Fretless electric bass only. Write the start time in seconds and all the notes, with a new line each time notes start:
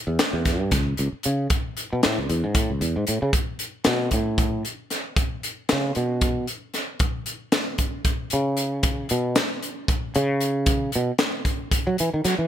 0.07 E2
0.33 E2
0.59 G2
0.72 C#2
0.99 C#2
1.12 muted fretless electric bass stroke
1.25 C#3
1.93 B2
2.05 A2
2.18 C#2
2.29 E2
2.44 G#2
2.57 A2
2.70 C#2
2.81 E2
2.96 G#2
3.08 A2
3.22 C#3
3.86 B2
4.13 A2
5.72 C#3
5.96 B2
8.33 C#3
9.11 B2
10.16 C#3
10.95 B2
11.87 F#3
12.00 E3
12.14 D#3
12.25 F#3
12.38 E3